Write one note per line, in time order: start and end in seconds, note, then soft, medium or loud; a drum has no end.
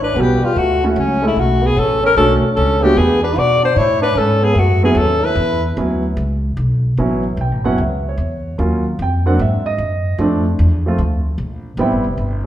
0.00 0.14 A1 medium
0.00 0.17 D4 medium
0.00 0.22 B4 medium
0.15 0.41 B1 medium
0.15 0.40 G3 soft
0.15 0.42 B3 medium
0.15 0.40 B3 soft
0.15 0.41 C#4 soft
0.15 0.41 F#4 soft
0.21 0.46 G4 medium
0.41 0.57 G3 medium
0.41 0.60 F4 medium
0.41 muted upright bass stroke soft
0.55 0.95 D2 medium
0.55 0.81 A3 medium
0.55 0.84 F#4 medium
0.82 0.97 C#3 soft
0.82 0.95 A3 medium
0.82 0.95 C#4 medium
0.82 0.95 E4 medium
0.82 0.96 F#4 medium
0.87 1.00 A3 soft
0.95 1.35 C#2 medium
0.95 1.22 F#3 medium
0.95 1.24 C#4 medium
1.22 1.37 G#3 medium
1.22 1.34 A3 medium
1.22 1.35 C#4 medium
1.22 1.35 E4 medium
1.22 1.35 A4 medium
1.27 1.41 E4 medium
1.36 1.75 B1 medium
1.36 1.63 A3 medium
1.36 1.67 F#4 medium
1.62 1.78 B3 medium
1.66 1.81 G#4 medium
1.76 2.15 A1 medium
1.76 2.03 C#4 medium
1.76 2.05 A4 medium
2.03 2.15 C#4 medium
2.03 2.17 A#4 loud
2.17 2.42 B1 medium
2.17 2.41 A3 medium
2.17 2.42 C#4 medium
2.17 2.41 C#4 medium
2.17 2.41 D4 medium
2.17 2.41 F#4 medium
2.17 2.33 A4 medium
2.44 muted upright bass stroke soft
2.56 2.96 C#2 medium
2.56 2.84 C#4 medium
2.56 2.85 A4 medium
2.82 2.95 G#3 medium
2.82 3.00 A3 medium
2.82 2.96 B3 medium
2.82 2.96 D4 medium
2.82 2.96 F#4 medium
2.82 2.99 G4 medium
2.97 3.35 E2 medium
2.97 3.22 B3 medium
2.97 3.23 G#4 medium
3.23 3.39 D4 medium
3.23 3.40 B4 medium
3.36 3.75 B2 medium
3.36 3.62 F#4 medium
3.36 3.64 D5 medium
3.62 3.78 D4 medium
3.62 3.79 C5 medium
3.76 4.14 A2 medium
3.76 4.01 E4 medium
3.76 4.02 C#5 medium
4.02 4.17 D4 medium
4.02 4.19 B4 medium
4.15 4.55 G#2 medium
4.15 4.44 C#4 medium
4.15 4.46 A4 medium
4.42 4.58 B3 medium
4.42 4.60 G#4 medium
4.55 4.94 F#2 medium
4.55 4.83 A3 medium
4.55 4.84 F#4 medium
4.83 4.95 F#3 medium
4.83 4.98 B3 medium
4.83 4.96 B3 medium
4.83 4.96 C#4 medium
4.83 4.96 E4 medium
4.83 4.99 G#4 medium
4.95 5.35 D#2 medium
4.95 5.25 C#4 medium
4.95 5.26 A4 medium
5.23 5.64 E4 medium
5.23 5.64 B4 medium
5.36 5.75 E2 medium
5.77 6.16 D2 medium
5.77 6.02 F#3 medium
5.77 6.02 B3 soft
5.77 6.02 C#4 soft
5.77 6.02 E4 medium
6.17 6.56 C#2 medium
6.57 6.96 B1 medium
6.97 7.37 A1 medium
6.97 7.22 F#3 medium
6.97 7.22 B3 medium
6.97 7.23 C#4 medium
6.97 7.23 E4 medium
7.37 7.51 B1 medium
7.37 7.66 G5 medium
7.51 7.64 A1 soft
7.64 7.77 F#1 medium
7.64 7.76 F#3 medium
7.64 7.77 B3 medium
7.64 7.77 C#4 medium
7.64 7.77 E4 medium
7.64 7.78 F#5 medium
7.78 8.17 C#2 medium
7.78 8.06 E5 medium
8.09 8.57 C#5 soft
8.17 8.57 E2 medium
8.58 8.97 D#2 medium
8.58 8.82 F#3 medium
8.58 8.82 A#3 soft
8.58 8.83 C#4 soft
8.58 8.83 F4 medium
8.99 9.38 F2 medium
8.99 9.27 G5 medium
9.26 9.37 F#3 medium
9.26 9.38 A#3 medium
9.26 9.38 C4 medium
9.26 9.38 D4 medium
9.26 9.39 F#5 medium
9.39 9.78 G#2 medium
9.39 9.66 E5 medium
9.66 10.15 D#5 medium
9.78 10.17 F#2 medium
10.18 10.57 F2 medium
10.18 10.43 F3 medium
10.18 10.43 A3 medium
10.18 10.44 C4 medium
10.18 10.44 D4 medium
10.59 10.98 E2 medium
10.86 10.98 F3 medium
10.86 10.98 A3 medium
10.86 10.99 C4 medium
10.86 10.99 F4 medium
10.98 11.37 D2 medium
11.38 11.77 A#1 medium
11.77 11.93 A1 medium
11.77 12.03 G3 medium
11.77 12.03 B3 medium
11.77 12.04 C4 medium
11.77 12.04 E4 medium
11.77 12.43 G5 medium
11.91 12.03 G1 medium
12.04 12.17 E1 soft
12.17 12.46 G1 medium